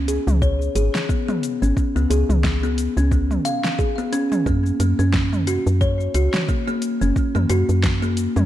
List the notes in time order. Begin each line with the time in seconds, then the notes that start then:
Already playing: C#2
0.08 G#4, closed hi-hat, cabasa
0.27 C#2, mid tom, cabasa
0.42 C#5, kick, cabasa
0.62 cabasa
0.75 G#1 G#4, closed hi-hat, cabasa
0.95 snare, cabasa
1.09 B3, kick, cabasa
1.28 B3, mid tom, cabasa
1.43 closed hi-hat, cabasa
1.62 G#1 C#4, cabasa
1.77 kick, cabasa
1.96 C#2 B3, cabasa
2.10 C#2 G#4, closed hi-hat, cabasa
2.29 C#2, mid tom, cabasa
2.44 kick, snare, cabasa
2.63 B3, cabasa
2.78 closed hi-hat, cabasa
2.97 C#2 C#4, cabasa
3.11 B3, kick, cabasa
3.31 mid tom, cabasa
3.45 F5, closed hi-hat, cabasa
3.64 snare, cabasa
3.79 G#4, kick, cabasa
3.98 B3, cabasa
4.13 C#4, closed hi-hat, cabasa
4.32 C#4, mid tom, cabasa
4.46 F#2 A#3, kick, cabasa
4.66 cabasa
4.80 F#2 A#3, closed hi-hat, cabasa
4.99 F#2 C#4, cabasa
5.13 kick, snare, cabasa
5.33 mid tom, cabasa
5.47 F#4, closed hi-hat, cabasa
5.67 F#2, cabasa
5.81 C#5, kick, cabasa
6.00 cabasa
6.14 C#2 F#4, closed hi-hat, cabasa
6.34 snare, mid tom, cabasa
6.49 A#3, kick, cabasa
6.68 A#3, cabasa
6.82 closed hi-hat, cabasa
7.01 F#1 C#4, cabasa
7.16 kick, cabasa
7.35 F#2 A#3, mid tom, cabasa
7.50 F#2 F#4, closed hi-hat, cabasa
7.69 F#2, cabasa
7.83 kick, snare, cabasa
8.02 A#3, cabasa
8.17 closed hi-hat, cabasa
8.36 F#2 C#4, mid tom, cabasa